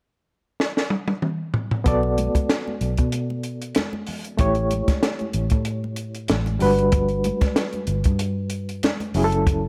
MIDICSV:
0, 0, Header, 1, 5, 480
1, 0, Start_track
1, 0, Key_signature, 2, "minor"
1, 0, Tempo, 634249
1, 1408, Time_signature, 4, 2, 24, 8
1, 7328, End_track
2, 0, Start_track
2, 0, Title_t, "Reed electric piano"
2, 0, Program_c, 0, 4
2, 1394, Note_on_c, 0, 59, 70
2, 1405, Note_on_c, 0, 66, 61
2, 1411, Note_on_c, 0, 69, 57
2, 1420, Note_on_c, 0, 74, 76
2, 1533, Control_c, 0, 64, 127
2, 3290, Note_off_c, 0, 59, 0
2, 3295, Note_off_c, 0, 66, 0
2, 3298, Note_off_c, 0, 69, 0
2, 3303, Note_off_c, 0, 74, 0
2, 3310, Note_on_c, 0, 57, 65
2, 3319, Note_on_c, 0, 64, 56
2, 3324, Note_on_c, 0, 67, 61
2, 3334, Note_on_c, 0, 73, 72
2, 3338, Control_c, 0, 64, 0
2, 3471, Control_c, 0, 64, 127
2, 4968, Note_off_c, 0, 57, 0
2, 4972, Note_off_c, 0, 64, 0
2, 4975, Note_off_c, 0, 67, 0
2, 4980, Note_off_c, 0, 73, 0
2, 4989, Note_on_c, 0, 55, 66
2, 4998, Note_on_c, 0, 62, 60
2, 5005, Note_on_c, 0, 66, 62
2, 5013, Note_on_c, 0, 71, 75
2, 5018, Control_c, 0, 64, 0
2, 5127, Control_c, 0, 64, 127
2, 6888, Note_off_c, 0, 55, 0
2, 6892, Note_off_c, 0, 62, 0
2, 6896, Note_off_c, 0, 66, 0
2, 6900, Note_off_c, 0, 71, 0
2, 6922, Note_on_c, 0, 54, 68
2, 6929, Note_on_c, 0, 61, 62
2, 6938, Control_c, 0, 64, 0
2, 6938, Note_on_c, 0, 64, 63
2, 6947, Note_on_c, 0, 68, 57
2, 6990, Note_off_c, 0, 68, 0
2, 6995, Note_on_c, 0, 69, 80
2, 7085, Control_c, 0, 64, 127
2, 7328, Note_off_c, 0, 54, 0
2, 7328, Note_off_c, 0, 61, 0
2, 7328, Note_off_c, 0, 64, 0
2, 7328, Note_off_c, 0, 69, 0
2, 7328, End_track
3, 0, Start_track
3, 0, Title_t, "Fingered electric bass"
3, 0, Program_c, 1, 33
3, 1408, Note_on_c, 1, 35, 87
3, 1720, Note_off_c, 1, 35, 0
3, 2128, Note_on_c, 1, 35, 69
3, 2237, Note_off_c, 1, 35, 0
3, 2258, Note_on_c, 1, 47, 83
3, 2818, Note_off_c, 1, 47, 0
3, 3322, Note_on_c, 1, 33, 85
3, 3636, Note_off_c, 1, 33, 0
3, 4044, Note_on_c, 1, 33, 74
3, 4154, Note_off_c, 1, 33, 0
3, 4175, Note_on_c, 1, 45, 80
3, 4736, Note_off_c, 1, 45, 0
3, 4768, Note_on_c, 1, 33, 77
3, 4970, Note_off_c, 1, 33, 0
3, 5006, Note_on_c, 1, 31, 89
3, 5521, Note_off_c, 1, 31, 0
3, 5960, Note_on_c, 1, 31, 79
3, 6073, Note_off_c, 1, 31, 0
3, 6098, Note_on_c, 1, 43, 86
3, 6658, Note_off_c, 1, 43, 0
3, 6921, Note_on_c, 1, 30, 87
3, 7328, Note_off_c, 1, 30, 0
3, 7328, End_track
4, 0, Start_track
4, 0, Title_t, "Muted fingered electric bass strokes"
4, 1777, Note_on_c, 9, 29, 41
4, 1852, Note_off_c, 9, 29, 0
4, 3694, Note_on_c, 9, 29, 39
4, 3770, Note_off_c, 9, 29, 0
4, 5614, Note_on_c, 9, 29, 46
4, 5690, Note_off_c, 9, 29, 0
4, 7328, End_track
5, 0, Start_track
5, 0, Title_t, "Drums"
5, 454, Note_on_c, 9, 38, 62
5, 529, Note_off_c, 9, 38, 0
5, 583, Note_on_c, 9, 38, 58
5, 659, Note_off_c, 9, 38, 0
5, 683, Note_on_c, 9, 48, 67
5, 759, Note_off_c, 9, 48, 0
5, 814, Note_on_c, 9, 48, 77
5, 890, Note_off_c, 9, 48, 0
5, 925, Note_on_c, 9, 47, 74
5, 1001, Note_off_c, 9, 47, 0
5, 1163, Note_on_c, 9, 43, 91
5, 1239, Note_off_c, 9, 43, 0
5, 1297, Note_on_c, 9, 43, 95
5, 1372, Note_off_c, 9, 43, 0
5, 1406, Note_on_c, 9, 42, 86
5, 1407, Note_on_c, 9, 36, 98
5, 1421, Note_on_c, 9, 62, 29
5, 1421, Note_on_c, 9, 64, 59
5, 1482, Note_off_c, 9, 42, 0
5, 1483, Note_off_c, 9, 36, 0
5, 1496, Note_off_c, 9, 62, 0
5, 1496, Note_off_c, 9, 64, 0
5, 1537, Note_on_c, 9, 62, 24
5, 1612, Note_off_c, 9, 62, 0
5, 1648, Note_on_c, 9, 42, 65
5, 1652, Note_on_c, 9, 63, 59
5, 1724, Note_off_c, 9, 42, 0
5, 1727, Note_off_c, 9, 63, 0
5, 1776, Note_on_c, 9, 63, 71
5, 1778, Note_on_c, 9, 36, 80
5, 1781, Note_on_c, 9, 42, 51
5, 1852, Note_off_c, 9, 63, 0
5, 1854, Note_off_c, 9, 36, 0
5, 1857, Note_off_c, 9, 42, 0
5, 1888, Note_on_c, 9, 38, 95
5, 1890, Note_on_c, 9, 42, 78
5, 1906, Note_on_c, 9, 62, 27
5, 1964, Note_off_c, 9, 38, 0
5, 1966, Note_off_c, 9, 42, 0
5, 1982, Note_off_c, 9, 62, 0
5, 2025, Note_on_c, 9, 62, 26
5, 2025, Note_on_c, 9, 63, 39
5, 2100, Note_off_c, 9, 62, 0
5, 2100, Note_off_c, 9, 63, 0
5, 2126, Note_on_c, 9, 42, 61
5, 2202, Note_off_c, 9, 42, 0
5, 2252, Note_on_c, 9, 42, 53
5, 2259, Note_on_c, 9, 36, 76
5, 2327, Note_off_c, 9, 42, 0
5, 2335, Note_off_c, 9, 36, 0
5, 2364, Note_on_c, 9, 42, 75
5, 2370, Note_on_c, 9, 62, 27
5, 2439, Note_off_c, 9, 42, 0
5, 2445, Note_off_c, 9, 62, 0
5, 2499, Note_on_c, 9, 62, 28
5, 2574, Note_off_c, 9, 62, 0
5, 2599, Note_on_c, 9, 42, 57
5, 2675, Note_off_c, 9, 42, 0
5, 2736, Note_on_c, 9, 42, 48
5, 2812, Note_off_c, 9, 42, 0
5, 2836, Note_on_c, 9, 42, 82
5, 2846, Note_on_c, 9, 38, 85
5, 2858, Note_on_c, 9, 63, 74
5, 2912, Note_off_c, 9, 42, 0
5, 2921, Note_off_c, 9, 38, 0
5, 2933, Note_off_c, 9, 63, 0
5, 2974, Note_on_c, 9, 63, 57
5, 3049, Note_off_c, 9, 63, 0
5, 3077, Note_on_c, 9, 46, 71
5, 3091, Note_on_c, 9, 64, 56
5, 3152, Note_off_c, 9, 46, 0
5, 3167, Note_off_c, 9, 64, 0
5, 3212, Note_on_c, 9, 42, 44
5, 3288, Note_off_c, 9, 42, 0
5, 3319, Note_on_c, 9, 42, 86
5, 3323, Note_on_c, 9, 36, 110
5, 3338, Note_on_c, 9, 62, 28
5, 3338, Note_on_c, 9, 64, 61
5, 3395, Note_off_c, 9, 42, 0
5, 3398, Note_off_c, 9, 36, 0
5, 3413, Note_off_c, 9, 62, 0
5, 3413, Note_off_c, 9, 64, 0
5, 3443, Note_on_c, 9, 42, 33
5, 3518, Note_off_c, 9, 42, 0
5, 3562, Note_on_c, 9, 42, 66
5, 3577, Note_on_c, 9, 63, 59
5, 3638, Note_off_c, 9, 42, 0
5, 3653, Note_off_c, 9, 63, 0
5, 3693, Note_on_c, 9, 36, 89
5, 3693, Note_on_c, 9, 42, 57
5, 3693, Note_on_c, 9, 63, 71
5, 3694, Note_on_c, 9, 38, 33
5, 3769, Note_off_c, 9, 36, 0
5, 3769, Note_off_c, 9, 38, 0
5, 3769, Note_off_c, 9, 42, 0
5, 3769, Note_off_c, 9, 63, 0
5, 3804, Note_on_c, 9, 38, 87
5, 3806, Note_on_c, 9, 42, 81
5, 3821, Note_on_c, 9, 62, 28
5, 3880, Note_off_c, 9, 38, 0
5, 3882, Note_off_c, 9, 42, 0
5, 3896, Note_off_c, 9, 62, 0
5, 3929, Note_on_c, 9, 42, 30
5, 3944, Note_on_c, 9, 62, 23
5, 3944, Note_on_c, 9, 63, 38
5, 4004, Note_off_c, 9, 42, 0
5, 4020, Note_off_c, 9, 62, 0
5, 4020, Note_off_c, 9, 63, 0
5, 4037, Note_on_c, 9, 42, 63
5, 4113, Note_off_c, 9, 42, 0
5, 4162, Note_on_c, 9, 42, 54
5, 4174, Note_on_c, 9, 36, 81
5, 4237, Note_off_c, 9, 42, 0
5, 4250, Note_off_c, 9, 36, 0
5, 4275, Note_on_c, 9, 42, 71
5, 4351, Note_off_c, 9, 42, 0
5, 4420, Note_on_c, 9, 62, 28
5, 4495, Note_off_c, 9, 62, 0
5, 4513, Note_on_c, 9, 42, 60
5, 4589, Note_off_c, 9, 42, 0
5, 4652, Note_on_c, 9, 42, 47
5, 4727, Note_off_c, 9, 42, 0
5, 4755, Note_on_c, 9, 42, 77
5, 4765, Note_on_c, 9, 38, 84
5, 4774, Note_on_c, 9, 63, 73
5, 4831, Note_off_c, 9, 42, 0
5, 4840, Note_off_c, 9, 38, 0
5, 4850, Note_off_c, 9, 63, 0
5, 4889, Note_on_c, 9, 63, 63
5, 4896, Note_on_c, 9, 42, 31
5, 4965, Note_off_c, 9, 63, 0
5, 4972, Note_off_c, 9, 42, 0
5, 4997, Note_on_c, 9, 46, 68
5, 5012, Note_on_c, 9, 64, 59
5, 5073, Note_off_c, 9, 46, 0
5, 5088, Note_off_c, 9, 64, 0
5, 5135, Note_on_c, 9, 42, 46
5, 5211, Note_off_c, 9, 42, 0
5, 5237, Note_on_c, 9, 42, 82
5, 5242, Note_on_c, 9, 36, 107
5, 5249, Note_on_c, 9, 62, 28
5, 5249, Note_on_c, 9, 64, 62
5, 5312, Note_off_c, 9, 42, 0
5, 5318, Note_off_c, 9, 36, 0
5, 5324, Note_off_c, 9, 62, 0
5, 5324, Note_off_c, 9, 64, 0
5, 5362, Note_on_c, 9, 42, 32
5, 5438, Note_off_c, 9, 42, 0
5, 5480, Note_on_c, 9, 42, 64
5, 5490, Note_on_c, 9, 63, 61
5, 5556, Note_off_c, 9, 42, 0
5, 5566, Note_off_c, 9, 63, 0
5, 5609, Note_on_c, 9, 42, 52
5, 5610, Note_on_c, 9, 38, 31
5, 5611, Note_on_c, 9, 63, 69
5, 5612, Note_on_c, 9, 36, 84
5, 5685, Note_off_c, 9, 42, 0
5, 5686, Note_off_c, 9, 38, 0
5, 5687, Note_off_c, 9, 63, 0
5, 5688, Note_off_c, 9, 36, 0
5, 5721, Note_on_c, 9, 38, 84
5, 5723, Note_on_c, 9, 42, 84
5, 5797, Note_off_c, 9, 38, 0
5, 5799, Note_off_c, 9, 42, 0
5, 5847, Note_on_c, 9, 42, 34
5, 5854, Note_on_c, 9, 62, 26
5, 5854, Note_on_c, 9, 63, 41
5, 5923, Note_off_c, 9, 42, 0
5, 5930, Note_off_c, 9, 62, 0
5, 5930, Note_off_c, 9, 63, 0
5, 5955, Note_on_c, 9, 42, 63
5, 6031, Note_off_c, 9, 42, 0
5, 6085, Note_on_c, 9, 42, 57
5, 6096, Note_on_c, 9, 36, 80
5, 6161, Note_off_c, 9, 42, 0
5, 6172, Note_off_c, 9, 36, 0
5, 6199, Note_on_c, 9, 42, 79
5, 6275, Note_off_c, 9, 42, 0
5, 6431, Note_on_c, 9, 42, 64
5, 6506, Note_off_c, 9, 42, 0
5, 6576, Note_on_c, 9, 42, 46
5, 6652, Note_off_c, 9, 42, 0
5, 6683, Note_on_c, 9, 42, 76
5, 6688, Note_on_c, 9, 62, 31
5, 6688, Note_on_c, 9, 63, 71
5, 6693, Note_on_c, 9, 38, 84
5, 6759, Note_off_c, 9, 42, 0
5, 6764, Note_off_c, 9, 62, 0
5, 6764, Note_off_c, 9, 63, 0
5, 6769, Note_off_c, 9, 38, 0
5, 6813, Note_on_c, 9, 63, 61
5, 6818, Note_on_c, 9, 42, 31
5, 6889, Note_off_c, 9, 63, 0
5, 6893, Note_off_c, 9, 42, 0
5, 6919, Note_on_c, 9, 46, 68
5, 6926, Note_on_c, 9, 64, 62
5, 6995, Note_off_c, 9, 46, 0
5, 7001, Note_off_c, 9, 64, 0
5, 7056, Note_on_c, 9, 42, 45
5, 7131, Note_off_c, 9, 42, 0
5, 7164, Note_on_c, 9, 36, 107
5, 7166, Note_on_c, 9, 42, 85
5, 7175, Note_on_c, 9, 64, 58
5, 7240, Note_off_c, 9, 36, 0
5, 7242, Note_off_c, 9, 42, 0
5, 7251, Note_off_c, 9, 64, 0
5, 7328, End_track
0, 0, End_of_file